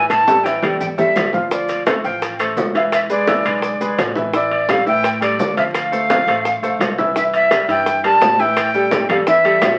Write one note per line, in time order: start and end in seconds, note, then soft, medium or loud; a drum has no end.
0.00 0.57 A1 medium
0.00 0.21 E3 medium
0.00 0.21 E4 medium
0.00 0.22 E5 medium
0.09 0.46 A5 loud
0.09 high bongo medium
0.09 high conga medium
0.09 high timbale medium
0.09 claves medium
0.09 maracas medium
0.27 0.42 G3 medium
0.27 0.42 G4 medium
0.27 0.42 A4 medium
0.27 high bongo medium
0.27 high conga medium
0.27 maracas medium
0.44 0.60 E3 medium
0.44 0.60 E4 medium
0.44 0.60 E5 medium
0.44 0.79 G5 medium
0.44 high timbale medium
0.44 low timbale medium
0.44 maracas medium
0.62 1.12 E2 medium
0.62 0.92 G3 medium
0.62 0.92 G4 medium
0.62 0.92 A4 medium
0.62 low bongo medium
0.62 high conga medium
0.62 high timbale medium
0.62 claves medium
0.62 maracas soft
0.80 0.86 G5 medium
0.80 low conga medium
0.80 maracas medium
0.98 1.27 G3 medium
0.98 1.27 G4 medium
0.98 1.27 A4 medium
0.98 1.31 E5 medium
0.98 low bongo medium
0.98 low conga medium
0.98 maracas medium
1.16 1.98 D2 medium
1.16 low bongo medium
1.16 low conga medium
1.16 high timbale medium
1.16 low timbale medium
1.16 claves medium
1.16 maracas medium
1.33 1.48 F3 medium
1.33 1.48 F4 medium
1.33 1.48 F5 medium
1.33 low bongo medium
1.33 low conga medium
1.33 maracas soft
1.51 1.80 F3 medium
1.51 1.80 F4 medium
1.51 1.84 D5 medium
1.51 1.80 F5 medium
1.51 high bongo medium
1.51 high conga soft
1.51 maracas medium
1.69 high bongo soft
1.69 high conga soft
1.69 high timbale medium
1.69 maracas medium
1.86 2.01 A3 medium
1.86 2.01 A4 medium
1.86 2.01 C5 medium
1.86 1.93 F5 medium
1.86 high bongo medium
1.86 high conga loud
1.86 high timbale medium
1.86 low timbale medium
1.86 claves medium
1.86 maracas medium
2.04 2.53 A1 medium
2.04 2.33 F3 medium
2.04 2.33 F4 medium
2.04 2.34 F5 medium
2.04 2.37 G5 medium
2.04 high bongo soft
2.04 maracas soft
2.22 high bongo medium
2.22 high conga soft
2.22 high timbale medium
2.22 maracas medium
2.39 2.69 A3 medium
2.39 2.69 A4 medium
2.39 2.69 C5 medium
2.39 high bongo soft
2.39 high conga soft
2.39 high timbale medium
2.39 claves medium
2.39 maracas medium
2.56 3.39 E1 medium
2.56 high bongo soft
2.56 low bongo medium
2.56 high conga medium
2.56 low timbale medium
2.56 maracas medium
2.74 3.03 E3 medium
2.74 3.04 E4 medium
2.74 3.04 E5 medium
2.74 2.83 F5 medium
2.74 high timbale medium
2.74 maracas soft
2.92 3.00 E5 medium
2.92 high bongo medium
2.92 high conga soft
2.92 high timbale medium
2.92 claves medium
2.92 maracas medium
3.10 3.24 G#3 medium
3.10 3.25 G#4 medium
3.10 3.25 B4 medium
3.10 4.12 D5 medium
3.10 high bongo soft
3.10 high conga soft
3.10 maracas medium
3.27 3.42 E3 medium
3.27 3.42 E4 medium
3.27 3.42 E5 medium
3.27 high bongo medium
3.27 high conga medium
3.27 high timbale medium
3.27 low timbale medium
3.27 maracas medium
3.45 3.78 B1 medium
3.45 3.74 G#3 medium
3.45 3.74 G#4 medium
3.45 3.75 B4 medium
3.45 high bongo soft
3.45 high conga soft
3.45 high timbale medium
3.45 claves medium
3.45 maracas soft
3.62 high bongo medium
3.62 high conga soft
3.62 maracas medium
3.80 3.97 B1 medium
3.80 4.10 G#3 medium
3.80 4.10 G#4 medium
3.80 4.10 B4 medium
3.80 high bongo soft
3.80 high conga soft
3.80 maracas medium
3.98 4.81 A1 medium
3.98 high bongo soft
3.98 low bongo medium
3.98 high conga medium
3.98 high timbale medium
3.98 low timbale medium
3.98 claves medium
3.98 maracas medium
4.15 4.30 E3 medium
4.15 4.30 E4 medium
4.15 4.31 E5 medium
4.15 high conga medium
4.15 maracas soft
4.33 4.62 E3 medium
4.33 4.62 E4 medium
4.33 4.72 D5 medium
4.33 4.63 E5 medium
4.33 high bongo medium
4.33 high conga soft
4.33 maracas medium
4.51 high bongo soft
4.51 high conga soft
4.51 high timbale medium
4.68 4.83 G3 medium
4.68 4.83 G4 medium
4.68 4.83 A4 medium
4.68 4.87 F5 medium
4.68 high bongo medium
4.68 high conga medium
4.68 high timbale medium
4.68 low timbale medium
4.68 claves medium
4.68 maracas medium
4.86 5.36 A2 medium
4.86 5.15 E3 medium
4.86 5.15 E4 medium
4.86 5.16 E5 medium
4.86 5.20 G5 loud
4.86 high bongo soft
4.86 maracas soft
5.04 high bongo medium
5.04 high conga soft
5.04 high timbale medium
5.04 maracas medium
5.21 5.50 G3 medium
5.21 5.50 G4 medium
5.21 5.51 A4 medium
5.21 5.55 D5 medium
5.21 high bongo soft
5.21 high conga soft
5.21 high timbale medium
5.21 claves medium
5.21 maracas medium
5.38 6.21 D2 medium
5.38 high bongo soft
5.38 low bongo medium
5.38 high conga medium
5.38 low timbale medium
5.38 maracas medium
5.57 5.86 F3 medium
5.57 5.86 F4 medium
5.57 5.64 E5 medium
5.57 5.86 F5 medium
5.57 high conga medium
5.57 high timbale medium
5.57 maracas soft
5.74 6.94 F5 medium
5.74 high bongo medium
5.74 high conga soft
5.74 high timbale medium
5.74 claves medium
5.74 maracas medium
5.92 6.07 A3 medium
5.92 6.07 A4 medium
5.92 6.07 C5 medium
5.92 high bongo soft
5.92 high conga soft
5.92 maracas medium
6.10 6.24 F3 medium
6.10 6.25 F4 medium
6.10 6.25 F5 medium
6.10 high bongo medium
6.10 high conga loud
6.10 high timbale medium
6.10 low timbale medium
6.10 maracas medium
6.27 6.60 A1 medium
6.27 6.57 A3 medium
6.27 6.57 A4 medium
6.27 6.57 C5 medium
6.27 high bongo soft
6.27 high conga soft
6.27 high timbale medium
6.27 claves medium
6.27 maracas soft
6.45 high bongo medium
6.45 high conga soft
6.45 maracas medium
6.62 6.79 A#1 medium
6.62 6.92 A3 medium
6.62 6.92 A4 medium
6.62 6.92 C5 medium
6.62 high bongo soft
6.62 high conga soft
6.62 maracas medium
6.79 7.62 C2 medium
6.79 high bongo soft
6.79 low bongo medium
6.79 high conga medium
6.79 high timbale medium
6.79 low timbale medium
6.79 claves medium
6.79 maracas medium
6.98 7.12 E3 medium
6.98 7.13 E4 medium
6.98 7.13 E5 medium
6.98 high conga medium
6.98 maracas soft
7.16 7.45 E3 medium
7.16 7.45 E4 medium
7.16 7.45 E5 medium
7.16 7.23 E5 medium
7.16 high bongo medium
7.16 high conga soft
7.16 maracas medium
7.34 7.67 E5 medium
7.34 high conga soft
7.34 high timbale medium
7.34 maracas soft
7.51 7.65 G3 medium
7.51 7.66 G4 medium
7.51 7.66 A#4 medium
7.51 high bongo medium
7.51 high conga medium
7.51 high timbale loud
7.51 low timbale medium
7.51 claves medium
7.51 maracas medium
7.68 8.17 G2 medium
7.68 7.97 E3 medium
7.68 7.97 E4 medium
7.68 7.98 E5 medium
7.68 8.02 G5 loud
7.68 high timbale medium
7.68 maracas soft
7.86 high bongo medium
7.86 high conga soft
7.86 maracas medium
8.04 8.33 G3 medium
8.04 8.33 G4 medium
8.04 8.33 A#4 medium
8.04 8.42 A5 loud
8.04 high conga soft
8.04 high timbale medium
8.04 claves medium
8.04 maracas soft
8.21 9.03 A2 medium
8.21 high bongo medium
8.21 low bongo medium
8.21 high conga medium
8.21 high timbale medium
8.21 low timbale medium
8.21 maracas medium
8.39 8.68 E3 medium
8.39 8.68 E4 medium
8.39 8.68 E5 medium
8.39 9.10 G5 loud
8.39 high conga soft
8.39 maracas soft
8.57 high bongo medium
8.57 high conga soft
8.57 high timbale medium
8.57 claves medium
8.57 maracas medium
8.74 9.03 G3 medium
8.74 9.03 G4 medium
8.74 9.04 A4 medium
8.74 high conga soft
8.74 maracas soft
8.91 high bongo medium
8.91 high conga loud
8.91 high timbale medium
8.91 low timbale medium
8.91 maracas medium
9.09 9.58 E2 medium
9.09 9.24 G3 medium
9.09 9.24 G4 medium
9.09 9.24 A4 medium
9.09 9.17 F5 medium
9.09 high bongo soft
9.09 high conga soft
9.09 low conga medium
9.09 high timbale medium
9.09 claves medium
9.09 maracas soft
9.27 9.41 E3 medium
9.27 9.42 E4 medium
9.27 9.42 E5 medium
9.27 9.76 E5 medium
9.27 high bongo medium
9.27 high conga soft
9.27 low conga medium
9.27 maracas medium
9.44 9.73 G3 medium
9.44 9.74 G4 medium
9.44 9.74 A4 medium
9.44 high bongo soft
9.44 high conga soft
9.44 high timbale medium
9.44 maracas soft
9.61 9.79 A#1 medium
9.61 high bongo medium
9.61 low bongo medium
9.61 high conga medium
9.61 high timbale loud
9.61 low timbale medium
9.61 claves medium
9.61 maracas medium